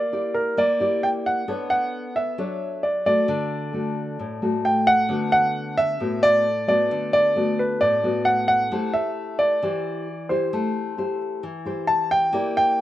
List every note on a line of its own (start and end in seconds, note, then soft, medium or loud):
0.00 0.55 A#3 medium
0.00 0.36 D5 medium
0.13 0.57 E4 medium
0.13 0.57 G4 soft
0.13 0.58 D5 medium
0.34 0.58 A#4 medium
0.57 1.46 A#3 medium
0.57 1.04 D5 medium
0.80 1.44 E4 medium
0.80 1.44 G4 medium
0.80 1.45 D5 medium
1.03 1.08 G5 medium
1.26 1.69 F#5 medium
1.48 2.36 B3 medium
1.48 2.09 D4 medium
1.48 2.09 A4 medium
1.48 2.09 C#5 medium
1.70 2.17 F#5 medium
2.16 2.86 E5 medium
2.38 3.26 F#3 medium
2.38 2.83 D4 medium
2.38 2.83 A4 medium
2.38 2.84 C#5 medium
2.83 3.05 D5 medium
3.06 3.70 A3 medium
3.06 3.71 F#4 medium
3.06 4.83 D5 medium
3.28 4.17 D3 medium
3.73 4.38 A3 soft
3.73 4.38 F#4 medium
4.19 5.07 A2 medium
4.42 5.06 A3 medium
4.42 5.06 F#4 medium
4.65 4.88 G5 medium
4.87 5.31 F#5 loud
5.09 5.97 D3 medium
5.09 5.96 A3 medium
5.09 5.96 B3 medium
5.09 5.97 F#4 medium
5.32 5.79 F#5 loud
5.78 6.24 E5 loud
6.00 6.88 A2 medium
6.00 6.45 A3 soft
6.00 6.45 B3 medium
6.00 6.46 F#4 soft
6.23 6.67 D5 loud
6.68 7.32 A3 medium
6.68 7.32 B3 medium
6.68 7.32 F#4 medium
6.68 7.12 D5 loud
6.91 7.79 D3 medium
7.13 7.60 D5 loud
7.36 8.00 A3 soft
7.36 8.00 B3 medium
7.36 8.00 F#4 medium
7.59 7.82 B4 medium
7.81 8.69 A2 medium
7.81 8.27 D5 loud
8.03 8.68 A3 medium
8.03 8.68 B3 medium
8.03 8.68 F#4 medium
8.25 8.46 F#5 medium
8.48 8.90 F#5 medium
8.72 9.60 A3 medium
8.72 9.58 E4 medium
8.72 9.59 G4 medium
8.72 9.59 C5 medium
8.94 9.40 E5 medium
9.39 10.32 D5 medium
9.62 10.50 E3 medium
9.62 10.07 E4 medium
9.62 10.07 G4 soft
9.62 10.08 C5 medium
10.29 10.94 E4 soft
10.29 10.94 G4 medium
10.29 11.16 C5 medium
10.29 10.94 C5 medium
10.53 11.41 A3 medium
10.98 11.43 E4 medium
10.98 11.43 G4 soft
10.98 11.43 C5 medium
11.43 12.31 E3 medium
11.65 12.29 E4 medium
11.65 12.30 G4 medium
11.65 12.30 C5 medium
11.87 12.11 A5 loud
12.11 12.56 G5 loud
12.33 12.81 A#3 medium
12.33 12.81 E4 medium
12.33 12.81 G4 medium
12.33 12.81 D5 medium
12.57 12.81 G5 loud